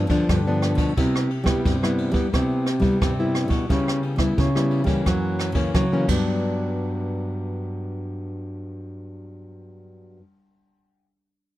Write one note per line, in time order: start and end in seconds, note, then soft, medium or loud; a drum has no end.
0.00 0.26 G2 soft
0.07 0.24 D3 medium
0.07 0.40 F3 medium
0.07 0.40 B3 medium
0.07 0.40 D4 medium
0.07 kick medium
0.07 ride soft
0.29 0.73 G2 medium
0.29 0.94 D3 medium
0.29 kick medium
0.29 cross-stick medium
0.29 ride soft
0.47 0.92 F3 medium
0.47 0.92 B3 medium
0.47 0.93 D4 medium
0.62 cross-stick medium
0.62 ride soft
0.75 0.92 B2 medium
0.75 kick medium
0.75 ride soft
0.97 1.62 C3 soft
0.97 1.26 C3 medium
0.97 1.29 G3 medium
0.97 1.29 B3 soft
0.97 1.29 E4 medium
0.97 kick medium
0.97 ride soft
1.15 cross-stick medium
1.30 ride soft
1.44 1.60 G3 medium
1.44 1.76 G3 medium
1.44 1.76 B3 medium
1.44 1.76 E4 medium
1.44 kick medium
1.44 cross-stick medium
1.44 ride soft
1.65 2.30 G2 soft
1.65 2.09 C3 medium
1.65 kick medium
1.65 ride soft
1.83 2.11 G3 medium
1.83 2.11 B3 medium
1.83 2.12 E4 medium
1.83 cross-stick medium
1.98 ride soft
2.12 2.28 G3 medium
2.12 2.27 G3 medium
2.12 2.27 B3 medium
2.12 2.27 E4 medium
2.12 kick medium
2.12 ride soft
2.33 2.98 C3 soft
2.33 2.77 C3 medium
2.33 2.65 G3 medium
2.33 2.65 B3 soft
2.33 2.66 E4 medium
2.33 kick medium
2.33 cross-stick medium
2.33 ride soft
2.66 cross-stick medium
2.66 ride soft
2.80 2.96 G3 medium
2.80 3.12 G3 medium
2.80 3.12 B3 medium
2.80 3.12 E4 medium
2.80 kick medium
2.80 ride soft
3.01 3.66 G2 medium
3.01 3.45 C3 medium
3.01 kick medium
3.01 cross-stick medium
3.01 ride soft
3.19 3.64 G3 soft
3.19 3.65 B3 soft
3.19 3.65 E4 medium
3.35 cross-stick medium
3.35 ride soft
3.48 3.64 B2 medium
3.48 kick medium
3.48 ride soft
3.69 4.34 C#3 medium
3.69 3.99 C#3 medium
3.69 4.15 G3 medium
3.69 4.15 B3 medium
3.69 4.16 E4 medium
3.69 kick medium
3.69 ride soft
3.88 cross-stick medium
4.03 ride soft
4.16 4.33 G3 medium
4.16 4.48 G3 soft
4.16 4.48 B3 medium
4.16 4.49 E4 medium
4.16 kick medium
4.16 cross-stick medium
4.16 ride soft
4.38 5.03 C#3 soft
4.38 4.82 C#3 medium
4.38 kick medium
4.38 ride soft
4.55 4.84 G3 medium
4.55 4.84 B3 medium
4.55 4.84 E4 medium
4.55 cross-stick medium
4.71 ride soft
4.84 5.50 E3 medium
4.84 5.01 G3 medium
4.84 5.51 A#3 medium
4.84 5.51 C#4 medium
4.84 kick medium
4.84 ride soft
5.06 5.71 F#2 soft
5.06 5.50 F#3 medium
5.06 kick medium
5.06 cross-stick medium
5.06 ride soft
5.39 cross-stick medium
5.39 ride soft
5.52 5.69 C#3 medium
5.52 5.85 E3 soft
5.52 5.85 A#3 soft
5.52 5.85 C#4 medium
5.52 kick medium
5.52 ride soft
5.74 6.08 C#3 soft
5.74 6.03 F#3 medium
5.74 kick medium
5.74 cross-stick medium
5.74 ride soft
5.92 6.08 E3 medium
5.92 6.09 A#3 soft
5.92 6.09 C#4 medium
6.06 10.18 G2 medium
6.06 10.17 G2 medium
6.06 10.21 F#3 medium
6.06 kick medium
6.06 crash medium
6.11 10.22 B3 medium
6.11 10.24 D4 medium